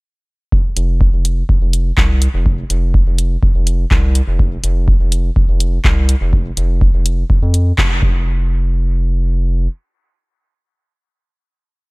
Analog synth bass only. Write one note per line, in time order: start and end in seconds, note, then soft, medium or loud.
0.76 1.07 F1 loud
1.13 1.43 F1 medium
1.61 1.92 F1 medium
1.97 2.28 C2 loud
2.34 2.64 F1 loud
2.70 3.01 F1 loud
3.07 3.37 F1 medium
3.55 3.85 F1 medium
3.91 4.22 C2 loud
4.28 4.58 F1 loud
4.64 4.94 F1 loud
5.00 5.30 F1 medium
5.48 5.79 F1 medium
5.85 6.15 C2 loud
6.21 6.51 F1 loud
6.57 6.88 F1 loud
6.94 7.24 F1 medium
7.42 7.72 F2 medium
7.78 8.02 F1 medium
8.02 9.68 F1 medium